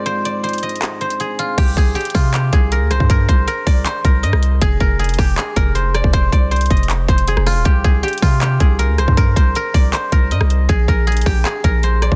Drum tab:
CC |------------------------------------------------------------------------------------------------|x-----------------------------------------------------------------------------------------------|------------------------------------------------------------------------------------------------|------------------------------------------------------------------------------------------------|
HH |x-----------x-----------x--x--x--x--x---x---x---x-----------x-----x-----x-----------x-----------|x-----------------------x--x--x--x--o-----------x-----------x-----------x-----------x-----------|x-----------x-----------x-----------o-----------x-----------x-----------x-----------x-----------|x-----------------------x--x--x--x--o-----------x-----------x-----------x-----------x-----------|
CP |------------------------------------------------x-----------------------------------------------|------------------------------------------------x-----------------------------------------------|------------------------------------------------x-----------------------------------------------|------------------------------------------------x-----------------------------------------------|
SD |------------------------------------------------------------------------------------------------|------------------------------------r-----------------------------------------------r-----------|------------------------------------------------------------------------------r-----------------|------------------------------------r-----------------------------------------------r-----------|
BD |------------------------------------------------------------------------------------------------|o-----------o-----------------------o-----------------------o-----------------------------o-----|o-----------o-----------------------o-----------------------o-----------------------------------|o-----------o-----------------------o-----------------------o-----------------------------o-----|

CC |------------------------------------------------------------------------------------------------|------------------------------------------------------------------------------------------------|------------------------------------------------------------------------------------------------|------------------------------------------------------------------------------------------------|
HH |x-----------x-----------x--x--x--x--x---x---x---x-----------x-----x-----x-----------o-----------|x-----------------------x--x--x--x--o-----------x-----------x-----------x-----------x-----------|x-----------x-----------x-----------o-----------x-----------x-----------x-----------x-----------|x-----------------------x--x--x--x--o-----------x-----------x-----------x-----------x-----------|
CP |------------------------------------------------x-----------------------------------------------|------------------------------------------------x-----------------------------------------------|------------------------------------------------x-----------------------------------------------|------------------------------------------------x-----------------------------------------------|
SD |------------------------------------------------------------------------------r-----r-----------|------------------------------------r-----------------------------------------------r-----------|------------------------------------------------------------------------------r-----------------|------------------------------------r-----------------------------------------------r-----------|
BD |o-----------o-----------------------o-----------------------o-----------------------------------|o-----------o-----------------------o-----------------------o-----------------------------o-----|o-----------o-----------------------o-----------------------o-----------------------------------|o-----------o-----------------------o-----------------------o-----------------------------o-----|